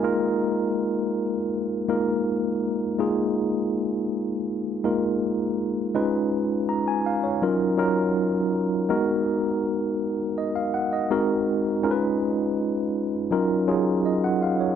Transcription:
\new Staff \with { instrumentName = "Tine electric piano" } { \time 4/4 \key bes \phrygian \tempo 4 = 81 << { r1 | r1 | r4 bes''16 aes''16 f''16 des''8 r4. r16 | r2 ees''16 f''16 ges''16 ees''8 r8. |
r2. ees''16 ges''16 f''16 des''16 | } \\ { <aes bes ees' f' bes'>4.~ <aes bes ees' f' bes'>16 r8. <aes bes ees' f' bes'>4. | <aes bes ees' f' aes'>4.~ <aes bes ees' f' aes'>16 r8. <aes bes ees' f' bes'>4. | <aes des' ees' f' ces''>4.~ <aes des' ees' f' ces''>16 r16 <ges des' ees' f' bes'>8 <ges des' ees' f' bes'>4. | <aes ces' ees' ges' bes'>4.~ <aes ces' ees' ges' bes'>16 r4 r16 <aes c' ees' ges' bes'>4 |
<aes des' ees' f' bes' ces''>4.~ <aes des' ees' f' bes' ces''>16 r16 <ges des' ees' f' bes'>8 <ges des' ees' f' aes'>4. | } >> }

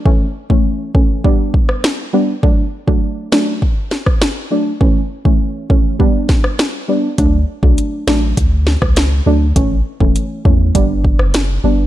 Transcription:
<<
  \new Staff \with { instrumentName = "Synth stab" } { \time 4/4 \key d \major \tempo 4 = 101 <e a cis'>16 r8 <e a cis'>8. <e a cis'>8 <g b d'>4. <g b d'>16 r16 | <fis a d'>16 r8 <fis a d'>8. <fis a d'>8 r4. <fis a d'>16 r16 | <e a cis'>16 r8 <e a cis'>8. <e a cis'>8 <g b d'>4. <g b d'>16 r16 | <fis a d'>16 r8 <fis a d'>8. <fis a d'>8 r4. <fis a d'>16 r16 |
<e a cis'>16 r8 <e a cis'>8. <e a cis'>8 <g b d'>4. <g b d'>16 r16 | }
  \new Staff \with { instrumentName = "Sub bass" } { \clef bass \time 4/4 \key d \major r1 | r1 | r1 | d,8 r16 b,,16 r8 a,,8 d,8. cis,8. d,8 |
a,,8 r16 e,,16 r8 e,8 g,,8. fis,,8. g,,8 | }
  \new DrumStaff \with { instrumentName = "Drums" } \drummode { \time 4/4 bd8. bd16 r8 bd8 bd8 bd16 ss16 sn4 | bd8. bd16 r8 sn8 bd8 sn16 <bd ss>16 sn4 | bd8. bd16 r8 bd8 bd8 <bd sn>16 ss16 sn4 | <hh bd>8. bd16 hh8 sn8 <hh bd>8 sn16 <bd ss>16 <hh sn>4 |
<hh bd>8. bd16 hh8 bd8 <hh bd>8 bd16 ss16 <hh sn>4 | }
>>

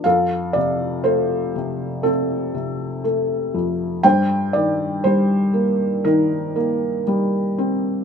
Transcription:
<<
  \new Staff \with { instrumentName = "Felt piano" } { \time 4/4 \key ees \lydian \tempo 4 = 60 << { f''8 d''8 c''4 a'4 r4 | g''8 d''8 c''4 bes'4 r4 | } \\ { a'2 c'2 | c''2 ees'2 | } >> }
  \new Staff \with { instrumentName = "Felt piano" } { \clef bass \time 4/4 \key ees \lydian f,8 c8 a8 c8 a8 c8 a8 f,8 | g,8 ees8 g8 bes8 ees8 bes8 g8 c'8 | }
>>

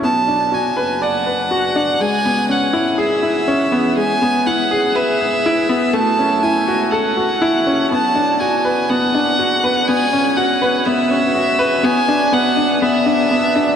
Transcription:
<<
  \new Staff \with { instrumentName = "Violin" } { \time 4/4 \key b \dorian \tempo 4 = 122 a''4 gis''4 fis''2 | gis''4 fis''4 e''2 | gis''4 fis''4 e''2 | a''4 gis''4 fis''2 |
a''4 gis''4 fis''2 | gis''4 fis''4 e''2 | gis''4 fis''4 e''2 | }
  \new Staff \with { instrumentName = "Grand piano" } { \time 4/4 \key b \dorian b8 d'8 fis'8 b'8 d''8 b'8 fis'8 d'8 | gis8 b8 cis'8 e'8 gis'8 e'8 cis'8 b8 | gis8 b8 e'8 gis'8 b'8 gis'8 e'8 b8 | a8 cis'8 e'8 fis'8 a'8 fis'8 e'8 cis'8 |
b8 d'8 fis'8 b'8 b8 d'8 fis'8 b'8 | b8 cis'8 fis'8 b'8 b8 cis'8 fis'8 b'8 | b8 d'8 b8 d'8 b8 d'8 b8 d'8 | }
  \new Staff \with { instrumentName = "Double bass section" } { \clef bass \time 4/4 \key b \dorian b,,4. fis,,2~ fis,,8 | cis,4. gis,,2 e,8~ | e,8 r4 b,,4 gis,4 fis,8~ | fis,4. cis,4 r8. e,16 fis,,16 r16 |
b,,4. fis,,2~ fis,,8 | cis,4. gis,,2 e,8~ | e,8 r4 b,,4 gis,4 fis,8 | }
>>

